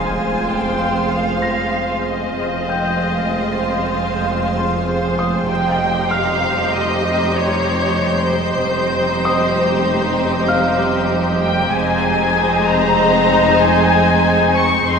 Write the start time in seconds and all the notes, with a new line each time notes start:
Already playing: F1 F2 G#3 C4 F4 G#4 C5 F5 G#5 C6 C7, sub drop
0.49 G5
1.12 F5
1.42 A#6
2.05 D#5
2.36 F1 F2 G#3 C4 F4 G#4 C5 F5
2.69 G5 G6
4.58 C6
4.86 C5
5.19 D#6
5.48 F1 F2 C3 G3 D#4 G4 C5 D#5 G5 C6
6.11 F5 F6 G6
6.75 D#5
7.37 C#5
8.31 C5
8.61 F1 F2 G3 C4 D#4 G4 C5 D#5
9.25 D#6
10.48 F5 F6
11.44 G5
11.73 F1 F2 G#3 C4 D#4 G#4 C5 D#5 G#5
12.69 A#5
13.63 G#5
14.56 C#6
14.86 F1 F2 G#3 C4 D#4 G#4 C5 D#5 C6